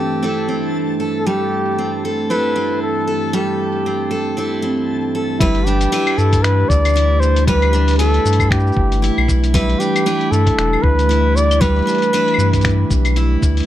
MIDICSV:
0, 0, Header, 1, 7, 480
1, 0, Start_track
1, 0, Key_signature, 1, "major"
1, 0, Tempo, 517241
1, 1175, Time_signature, 4, 2, 24, 8
1, 12676, End_track
2, 0, Start_track
2, 0, Title_t, "Synth texture"
2, 0, Program_c, 0, 99
2, 0, Note_on_c, 0, 69, 73
2, 0, Note_on_c, 0, 81, 78
2, 5027, Note_off_c, 0, 81, 0
2, 5031, Note_off_c, 0, 69, 0
2, 12676, End_track
3, 0, Start_track
3, 0, Title_t, "Flugelhorn"
3, 0, Program_c, 1, 56
3, 0, Note_on_c, 1, 67, 86
3, 924, Note_off_c, 1, 67, 0
3, 1106, Note_on_c, 1, 69, 73
3, 1170, Note_on_c, 1, 67, 101
3, 1184, Note_off_c, 1, 69, 0
3, 1892, Note_off_c, 1, 67, 0
3, 2139, Note_on_c, 1, 71, 99
3, 2583, Note_off_c, 1, 71, 0
3, 2620, Note_on_c, 1, 69, 88
3, 3100, Note_on_c, 1, 67, 82
3, 3114, Note_off_c, 1, 69, 0
3, 4537, Note_off_c, 1, 67, 0
3, 5007, Note_on_c, 1, 64, 88
3, 5244, Note_on_c, 1, 67, 97
3, 5258, Note_off_c, 1, 64, 0
3, 5731, Note_on_c, 1, 69, 94
3, 5745, Note_off_c, 1, 67, 0
3, 5965, Note_on_c, 1, 71, 107
3, 5979, Note_off_c, 1, 69, 0
3, 6203, Note_on_c, 1, 74, 114
3, 6217, Note_off_c, 1, 71, 0
3, 6681, Note_on_c, 1, 72, 112
3, 6695, Note_off_c, 1, 74, 0
3, 6928, Note_off_c, 1, 72, 0
3, 6933, Note_on_c, 1, 71, 104
3, 7380, Note_off_c, 1, 71, 0
3, 7410, Note_on_c, 1, 69, 104
3, 7887, Note_on_c, 1, 67, 91
3, 7901, Note_off_c, 1, 69, 0
3, 8611, Note_off_c, 1, 67, 0
3, 8843, Note_on_c, 1, 64, 86
3, 9087, Note_on_c, 1, 67, 99
3, 9101, Note_off_c, 1, 64, 0
3, 9568, Note_on_c, 1, 69, 112
3, 9582, Note_off_c, 1, 67, 0
3, 10046, Note_on_c, 1, 71, 104
3, 10060, Note_off_c, 1, 69, 0
3, 10542, Note_on_c, 1, 74, 112
3, 10556, Note_off_c, 1, 71, 0
3, 10773, Note_on_c, 1, 71, 115
3, 10786, Note_off_c, 1, 74, 0
3, 12214, Note_off_c, 1, 71, 0
3, 12676, End_track
4, 0, Start_track
4, 0, Title_t, "Steel-string acoustic guitar"
4, 0, Program_c, 2, 25
4, 0, Note_on_c, 2, 55, 74
4, 0, Note_on_c, 2, 60, 56
4, 0, Note_on_c, 2, 64, 54
4, 0, Note_on_c, 2, 69, 58
4, 198, Note_off_c, 2, 60, 0
4, 209, Note_on_c, 2, 60, 53
4, 210, Note_off_c, 2, 64, 0
4, 212, Note_off_c, 2, 69, 0
4, 213, Note_on_c, 2, 64, 50
4, 224, Note_on_c, 2, 69, 62
4, 439, Note_off_c, 2, 60, 0
4, 450, Note_on_c, 2, 60, 52
4, 915, Note_off_c, 2, 69, 0
4, 926, Note_on_c, 2, 69, 57
4, 1170, Note_off_c, 2, 55, 0
4, 1170, Note_off_c, 2, 69, 0
4, 1174, Note_on_c, 2, 55, 74
4, 1180, Note_on_c, 2, 69, 63
4, 1645, Note_off_c, 2, 60, 0
4, 1656, Note_on_c, 2, 60, 55
4, 1890, Note_off_c, 2, 69, 0
4, 1901, Note_on_c, 2, 69, 61
4, 2122, Note_off_c, 2, 60, 0
4, 2133, Note_off_c, 2, 69, 0
4, 2134, Note_on_c, 2, 60, 53
4, 2136, Note_off_c, 2, 64, 0
4, 2140, Note_on_c, 2, 64, 53
4, 2144, Note_on_c, 2, 69, 64
4, 2361, Note_off_c, 2, 60, 0
4, 2372, Note_on_c, 2, 60, 58
4, 2842, Note_off_c, 2, 69, 0
4, 2853, Note_on_c, 2, 69, 62
4, 3089, Note_off_c, 2, 55, 0
4, 3091, Note_off_c, 2, 69, 0
4, 3093, Note_on_c, 2, 55, 81
4, 3102, Note_on_c, 2, 69, 62
4, 3573, Note_off_c, 2, 60, 0
4, 3583, Note_on_c, 2, 60, 56
4, 3800, Note_off_c, 2, 69, 0
4, 3811, Note_on_c, 2, 69, 61
4, 4045, Note_off_c, 2, 60, 0
4, 4053, Note_off_c, 2, 69, 0
4, 4055, Note_on_c, 2, 60, 53
4, 4058, Note_off_c, 2, 64, 0
4, 4062, Note_on_c, 2, 64, 50
4, 4069, Note_on_c, 2, 69, 58
4, 4280, Note_off_c, 2, 60, 0
4, 4291, Note_on_c, 2, 60, 57
4, 4766, Note_off_c, 2, 69, 0
4, 4777, Note_on_c, 2, 69, 62
4, 5016, Note_off_c, 2, 55, 0
4, 5020, Note_on_c, 2, 55, 85
4, 5021, Note_off_c, 2, 69, 0
4, 5025, Note_on_c, 2, 71, 78
4, 5066, Note_off_c, 2, 60, 0
4, 5262, Note_on_c, 2, 62, 67
4, 5290, Note_off_c, 2, 64, 0
4, 5483, Note_off_c, 2, 62, 0
4, 5494, Note_on_c, 2, 62, 63
4, 5497, Note_off_c, 2, 71, 0
4, 5498, Note_on_c, 2, 64, 66
4, 5508, Note_on_c, 2, 71, 73
4, 6451, Note_off_c, 2, 64, 0
4, 6455, Note_on_c, 2, 64, 59
4, 6932, Note_off_c, 2, 71, 0
4, 6937, Note_off_c, 2, 55, 0
4, 6940, Note_on_c, 2, 55, 81
4, 6945, Note_on_c, 2, 71, 70
4, 7161, Note_off_c, 2, 62, 0
4, 7173, Note_on_c, 2, 62, 67
4, 7406, Note_off_c, 2, 62, 0
4, 7412, Note_off_c, 2, 71, 0
4, 7416, Note_on_c, 2, 62, 62
4, 7419, Note_off_c, 2, 64, 0
4, 7422, Note_on_c, 2, 64, 54
4, 7424, Note_on_c, 2, 71, 67
4, 8369, Note_off_c, 2, 64, 0
4, 8373, Note_on_c, 2, 64, 56
4, 8849, Note_off_c, 2, 55, 0
4, 8849, Note_off_c, 2, 71, 0
4, 8853, Note_on_c, 2, 55, 92
4, 8860, Note_on_c, 2, 71, 79
4, 9083, Note_off_c, 2, 62, 0
4, 9094, Note_on_c, 2, 62, 66
4, 9325, Note_off_c, 2, 62, 0
4, 9334, Note_off_c, 2, 71, 0
4, 9336, Note_on_c, 2, 62, 66
4, 9337, Note_off_c, 2, 64, 0
4, 9340, Note_on_c, 2, 64, 65
4, 9345, Note_on_c, 2, 71, 73
4, 10288, Note_off_c, 2, 64, 0
4, 10292, Note_on_c, 2, 64, 64
4, 10768, Note_off_c, 2, 55, 0
4, 10768, Note_off_c, 2, 71, 0
4, 10772, Note_on_c, 2, 55, 86
4, 10779, Note_on_c, 2, 71, 69
4, 11004, Note_off_c, 2, 62, 0
4, 11015, Note_on_c, 2, 62, 69
4, 11246, Note_off_c, 2, 62, 0
4, 11257, Note_off_c, 2, 71, 0
4, 11257, Note_on_c, 2, 62, 68
4, 11259, Note_off_c, 2, 64, 0
4, 11263, Note_on_c, 2, 64, 67
4, 11269, Note_on_c, 2, 71, 69
4, 12214, Note_off_c, 2, 64, 0
4, 12218, Note_on_c, 2, 64, 56
4, 12676, Note_off_c, 2, 55, 0
4, 12676, Note_off_c, 2, 62, 0
4, 12676, Note_off_c, 2, 64, 0
4, 12676, Note_off_c, 2, 71, 0
4, 12676, End_track
5, 0, Start_track
5, 0, Title_t, "Ambient pad"
5, 0, Program_c, 3, 92
5, 0, Note_on_c, 3, 43, 75
5, 0, Note_on_c, 3, 52, 75
5, 0, Note_on_c, 3, 57, 85
5, 0, Note_on_c, 3, 62, 80
5, 0, Note_on_c, 3, 67, 73
5, 5001, Note_off_c, 3, 52, 0
5, 5009, Note_off_c, 3, 62, 0
5, 5012, Note_off_c, 3, 43, 0
5, 5012, Note_off_c, 3, 57, 0
5, 5012, Note_on_c, 3, 52, 75
5, 5232, Note_on_c, 3, 62, 72
5, 5487, Note_on_c, 3, 57, 92
5, 9618, Note_on_c, 3, 64, 75
5, 9757, Note_off_c, 3, 62, 0
5, 12676, Note_off_c, 3, 52, 0
5, 12676, Note_off_c, 3, 57, 0
5, 12676, Note_off_c, 3, 64, 0
5, 12676, Note_off_c, 3, 67, 0
5, 12676, End_track
6, 0, Start_track
6, 0, Title_t, "Sub bass"
6, 0, Program_c, 4, 38
6, 5018, Note_on_c, 4, 31, 102
6, 5450, Note_off_c, 4, 31, 0
6, 5735, Note_on_c, 4, 43, 100
6, 6169, Note_off_c, 4, 43, 0
6, 6214, Note_on_c, 4, 38, 100
6, 7608, Note_off_c, 4, 38, 0
6, 7658, Note_on_c, 4, 43, 92
6, 8090, Note_off_c, 4, 43, 0
6, 8135, Note_on_c, 4, 31, 107
6, 8450, Note_off_c, 4, 31, 0
6, 8516, Note_on_c, 4, 35, 88
6, 9052, Note_off_c, 4, 35, 0
6, 9574, Note_on_c, 4, 43, 100
6, 9756, Note_off_c, 4, 43, 0
6, 9812, Note_on_c, 4, 28, 92
6, 9996, Note_off_c, 4, 28, 0
6, 10055, Note_on_c, 4, 38, 87
6, 10969, Note_off_c, 4, 38, 0
6, 11490, Note_on_c, 4, 43, 92
6, 11926, Note_off_c, 4, 43, 0
6, 11977, Note_on_c, 4, 35, 99
6, 12410, Note_off_c, 4, 35, 0
6, 12460, Note_on_c, 4, 38, 78
6, 12640, Note_off_c, 4, 38, 0
6, 12676, End_track
7, 0, Start_track
7, 0, Title_t, "Drums"
7, 5016, Note_on_c, 9, 36, 121
7, 5017, Note_on_c, 9, 42, 59
7, 5018, Note_on_c, 9, 69, 36
7, 5109, Note_off_c, 9, 36, 0
7, 5110, Note_off_c, 9, 42, 0
7, 5111, Note_off_c, 9, 69, 0
7, 5148, Note_on_c, 9, 42, 30
7, 5241, Note_off_c, 9, 42, 0
7, 5257, Note_on_c, 9, 69, 82
7, 5350, Note_off_c, 9, 69, 0
7, 5390, Note_on_c, 9, 42, 49
7, 5391, Note_on_c, 9, 69, 44
7, 5482, Note_off_c, 9, 42, 0
7, 5484, Note_off_c, 9, 69, 0
7, 5498, Note_on_c, 9, 42, 58
7, 5500, Note_on_c, 9, 69, 35
7, 5591, Note_off_c, 9, 42, 0
7, 5593, Note_off_c, 9, 69, 0
7, 5632, Note_on_c, 9, 42, 31
7, 5632, Note_on_c, 9, 75, 80
7, 5724, Note_off_c, 9, 42, 0
7, 5724, Note_off_c, 9, 75, 0
7, 5738, Note_on_c, 9, 69, 74
7, 5831, Note_off_c, 9, 69, 0
7, 5871, Note_on_c, 9, 36, 62
7, 5871, Note_on_c, 9, 42, 44
7, 5872, Note_on_c, 9, 69, 47
7, 5964, Note_off_c, 9, 36, 0
7, 5964, Note_off_c, 9, 42, 0
7, 5965, Note_off_c, 9, 69, 0
7, 5980, Note_on_c, 9, 26, 78
7, 5980, Note_on_c, 9, 42, 59
7, 5981, Note_on_c, 9, 69, 32
7, 6073, Note_off_c, 9, 26, 0
7, 6073, Note_off_c, 9, 42, 0
7, 6074, Note_off_c, 9, 69, 0
7, 6217, Note_on_c, 9, 36, 93
7, 6223, Note_on_c, 9, 69, 83
7, 6310, Note_off_c, 9, 36, 0
7, 6315, Note_off_c, 9, 69, 0
7, 6357, Note_on_c, 9, 42, 46
7, 6357, Note_on_c, 9, 75, 78
7, 6359, Note_on_c, 9, 69, 42
7, 6388, Note_off_c, 9, 69, 0
7, 6388, Note_on_c, 9, 69, 35
7, 6431, Note_off_c, 9, 69, 0
7, 6431, Note_on_c, 9, 69, 28
7, 6450, Note_off_c, 9, 42, 0
7, 6450, Note_off_c, 9, 75, 0
7, 6466, Note_on_c, 9, 42, 61
7, 6467, Note_off_c, 9, 69, 0
7, 6467, Note_on_c, 9, 69, 34
7, 6558, Note_off_c, 9, 42, 0
7, 6560, Note_off_c, 9, 69, 0
7, 6700, Note_on_c, 9, 69, 82
7, 6793, Note_off_c, 9, 69, 0
7, 6833, Note_on_c, 9, 42, 47
7, 6834, Note_on_c, 9, 69, 44
7, 6926, Note_off_c, 9, 42, 0
7, 6927, Note_off_c, 9, 69, 0
7, 6937, Note_on_c, 9, 36, 122
7, 6938, Note_on_c, 9, 42, 59
7, 6939, Note_on_c, 9, 69, 36
7, 7030, Note_off_c, 9, 36, 0
7, 7031, Note_off_c, 9, 42, 0
7, 7032, Note_off_c, 9, 69, 0
7, 7074, Note_on_c, 9, 42, 31
7, 7074, Note_on_c, 9, 75, 73
7, 7167, Note_off_c, 9, 42, 0
7, 7167, Note_off_c, 9, 75, 0
7, 7179, Note_on_c, 9, 69, 80
7, 7272, Note_off_c, 9, 69, 0
7, 7311, Note_on_c, 9, 42, 45
7, 7313, Note_on_c, 9, 69, 47
7, 7339, Note_off_c, 9, 42, 0
7, 7339, Note_on_c, 9, 42, 35
7, 7361, Note_off_c, 9, 42, 0
7, 7361, Note_on_c, 9, 42, 31
7, 7386, Note_off_c, 9, 42, 0
7, 7386, Note_on_c, 9, 42, 22
7, 7405, Note_off_c, 9, 69, 0
7, 7415, Note_off_c, 9, 42, 0
7, 7415, Note_on_c, 9, 42, 62
7, 7417, Note_on_c, 9, 69, 36
7, 7508, Note_off_c, 9, 42, 0
7, 7509, Note_off_c, 9, 69, 0
7, 7556, Note_on_c, 9, 42, 32
7, 7649, Note_off_c, 9, 42, 0
7, 7661, Note_on_c, 9, 69, 76
7, 7728, Note_on_c, 9, 42, 45
7, 7754, Note_off_c, 9, 69, 0
7, 7791, Note_on_c, 9, 36, 66
7, 7794, Note_on_c, 9, 75, 81
7, 7795, Note_on_c, 9, 69, 46
7, 7821, Note_off_c, 9, 42, 0
7, 7884, Note_off_c, 9, 36, 0
7, 7887, Note_off_c, 9, 75, 0
7, 7888, Note_off_c, 9, 69, 0
7, 7895, Note_on_c, 9, 36, 111
7, 7905, Note_on_c, 9, 26, 80
7, 7905, Note_on_c, 9, 42, 55
7, 7906, Note_on_c, 9, 69, 15
7, 7976, Note_off_c, 9, 69, 0
7, 7976, Note_on_c, 9, 69, 20
7, 7988, Note_off_c, 9, 36, 0
7, 7998, Note_off_c, 9, 26, 0
7, 7998, Note_off_c, 9, 42, 0
7, 8043, Note_off_c, 9, 69, 0
7, 8043, Note_on_c, 9, 69, 25
7, 8093, Note_off_c, 9, 69, 0
7, 8093, Note_on_c, 9, 69, 29
7, 8135, Note_on_c, 9, 36, 102
7, 8186, Note_off_c, 9, 69, 0
7, 8228, Note_off_c, 9, 36, 0
7, 8277, Note_on_c, 9, 42, 46
7, 8278, Note_on_c, 9, 69, 45
7, 8370, Note_off_c, 9, 42, 0
7, 8371, Note_off_c, 9, 69, 0
7, 8386, Note_on_c, 9, 42, 56
7, 8388, Note_on_c, 9, 69, 35
7, 8479, Note_off_c, 9, 42, 0
7, 8480, Note_off_c, 9, 69, 0
7, 8519, Note_on_c, 9, 75, 83
7, 8611, Note_off_c, 9, 75, 0
7, 8615, Note_on_c, 9, 36, 61
7, 8620, Note_on_c, 9, 69, 90
7, 8708, Note_off_c, 9, 36, 0
7, 8713, Note_off_c, 9, 69, 0
7, 8757, Note_on_c, 9, 42, 48
7, 8758, Note_on_c, 9, 69, 47
7, 8850, Note_off_c, 9, 42, 0
7, 8851, Note_off_c, 9, 69, 0
7, 8855, Note_on_c, 9, 36, 116
7, 8864, Note_on_c, 9, 42, 59
7, 8865, Note_on_c, 9, 69, 40
7, 8948, Note_off_c, 9, 36, 0
7, 8957, Note_off_c, 9, 42, 0
7, 8958, Note_off_c, 9, 69, 0
7, 8998, Note_on_c, 9, 42, 29
7, 9090, Note_off_c, 9, 42, 0
7, 9101, Note_on_c, 9, 69, 92
7, 9194, Note_off_c, 9, 69, 0
7, 9240, Note_on_c, 9, 42, 45
7, 9240, Note_on_c, 9, 75, 78
7, 9241, Note_on_c, 9, 69, 47
7, 9333, Note_off_c, 9, 42, 0
7, 9333, Note_off_c, 9, 75, 0
7, 9334, Note_off_c, 9, 69, 0
7, 9341, Note_on_c, 9, 42, 59
7, 9342, Note_on_c, 9, 69, 36
7, 9433, Note_off_c, 9, 42, 0
7, 9435, Note_off_c, 9, 69, 0
7, 9475, Note_on_c, 9, 42, 31
7, 9568, Note_off_c, 9, 42, 0
7, 9582, Note_on_c, 9, 69, 81
7, 9674, Note_off_c, 9, 69, 0
7, 9711, Note_on_c, 9, 36, 67
7, 9714, Note_on_c, 9, 42, 44
7, 9804, Note_off_c, 9, 36, 0
7, 9807, Note_off_c, 9, 42, 0
7, 9823, Note_on_c, 9, 26, 78
7, 9823, Note_on_c, 9, 42, 53
7, 9824, Note_on_c, 9, 69, 33
7, 9916, Note_off_c, 9, 26, 0
7, 9916, Note_off_c, 9, 42, 0
7, 9917, Note_off_c, 9, 69, 0
7, 9960, Note_on_c, 9, 75, 79
7, 10052, Note_off_c, 9, 75, 0
7, 10056, Note_on_c, 9, 36, 100
7, 10149, Note_off_c, 9, 36, 0
7, 10198, Note_on_c, 9, 42, 45
7, 10199, Note_on_c, 9, 69, 47
7, 10291, Note_off_c, 9, 42, 0
7, 10292, Note_off_c, 9, 69, 0
7, 10307, Note_on_c, 9, 42, 58
7, 10308, Note_on_c, 9, 69, 35
7, 10399, Note_off_c, 9, 42, 0
7, 10401, Note_off_c, 9, 69, 0
7, 10547, Note_on_c, 9, 69, 91
7, 10640, Note_off_c, 9, 69, 0
7, 10681, Note_on_c, 9, 42, 42
7, 10681, Note_on_c, 9, 75, 79
7, 10683, Note_on_c, 9, 69, 48
7, 10774, Note_off_c, 9, 42, 0
7, 10774, Note_off_c, 9, 75, 0
7, 10775, Note_off_c, 9, 69, 0
7, 10776, Note_on_c, 9, 36, 124
7, 10784, Note_on_c, 9, 42, 57
7, 10785, Note_on_c, 9, 69, 38
7, 10869, Note_off_c, 9, 36, 0
7, 10877, Note_off_c, 9, 42, 0
7, 10878, Note_off_c, 9, 69, 0
7, 10916, Note_on_c, 9, 42, 13
7, 10941, Note_off_c, 9, 42, 0
7, 10941, Note_on_c, 9, 42, 14
7, 10972, Note_off_c, 9, 42, 0
7, 10972, Note_on_c, 9, 42, 15
7, 11003, Note_off_c, 9, 42, 0
7, 11003, Note_on_c, 9, 42, 18
7, 11025, Note_off_c, 9, 42, 0
7, 11025, Note_on_c, 9, 42, 21
7, 11027, Note_on_c, 9, 69, 88
7, 11056, Note_off_c, 9, 42, 0
7, 11056, Note_on_c, 9, 42, 23
7, 11087, Note_off_c, 9, 42, 0
7, 11087, Note_on_c, 9, 42, 27
7, 11119, Note_off_c, 9, 69, 0
7, 11121, Note_off_c, 9, 42, 0
7, 11121, Note_on_c, 9, 42, 27
7, 11156, Note_off_c, 9, 42, 0
7, 11156, Note_on_c, 9, 42, 42
7, 11157, Note_on_c, 9, 69, 46
7, 11249, Note_off_c, 9, 42, 0
7, 11250, Note_off_c, 9, 69, 0
7, 11266, Note_on_c, 9, 42, 53
7, 11267, Note_on_c, 9, 69, 35
7, 11359, Note_off_c, 9, 42, 0
7, 11360, Note_off_c, 9, 69, 0
7, 11395, Note_on_c, 9, 42, 30
7, 11451, Note_on_c, 9, 75, 74
7, 11488, Note_off_c, 9, 42, 0
7, 11500, Note_on_c, 9, 69, 87
7, 11544, Note_off_c, 9, 75, 0
7, 11592, Note_off_c, 9, 69, 0
7, 11629, Note_on_c, 9, 36, 60
7, 11632, Note_on_c, 9, 42, 42
7, 11633, Note_on_c, 9, 69, 45
7, 11705, Note_off_c, 9, 42, 0
7, 11705, Note_on_c, 9, 42, 35
7, 11706, Note_off_c, 9, 69, 0
7, 11706, Note_on_c, 9, 69, 37
7, 11722, Note_off_c, 9, 36, 0
7, 11736, Note_on_c, 9, 36, 104
7, 11737, Note_off_c, 9, 42, 0
7, 11737, Note_on_c, 9, 26, 74
7, 11737, Note_on_c, 9, 42, 52
7, 11739, Note_off_c, 9, 69, 0
7, 11739, Note_on_c, 9, 69, 35
7, 11780, Note_off_c, 9, 42, 0
7, 11780, Note_on_c, 9, 42, 28
7, 11781, Note_off_c, 9, 69, 0
7, 11781, Note_on_c, 9, 69, 29
7, 11829, Note_off_c, 9, 36, 0
7, 11830, Note_off_c, 9, 26, 0
7, 11872, Note_off_c, 9, 42, 0
7, 11874, Note_off_c, 9, 69, 0
7, 11977, Note_on_c, 9, 36, 100
7, 11977, Note_on_c, 9, 69, 84
7, 12069, Note_off_c, 9, 36, 0
7, 12070, Note_off_c, 9, 69, 0
7, 12110, Note_on_c, 9, 42, 42
7, 12110, Note_on_c, 9, 75, 79
7, 12111, Note_on_c, 9, 69, 45
7, 12203, Note_off_c, 9, 42, 0
7, 12203, Note_off_c, 9, 75, 0
7, 12204, Note_off_c, 9, 69, 0
7, 12214, Note_on_c, 9, 42, 54
7, 12216, Note_on_c, 9, 69, 32
7, 12307, Note_off_c, 9, 42, 0
7, 12308, Note_off_c, 9, 69, 0
7, 12458, Note_on_c, 9, 36, 65
7, 12459, Note_on_c, 9, 69, 90
7, 12550, Note_off_c, 9, 36, 0
7, 12552, Note_off_c, 9, 69, 0
7, 12594, Note_on_c, 9, 42, 40
7, 12595, Note_on_c, 9, 69, 48
7, 12624, Note_off_c, 9, 42, 0
7, 12624, Note_on_c, 9, 42, 36
7, 12676, Note_off_c, 9, 42, 0
7, 12676, Note_off_c, 9, 69, 0
7, 12676, End_track
0, 0, End_of_file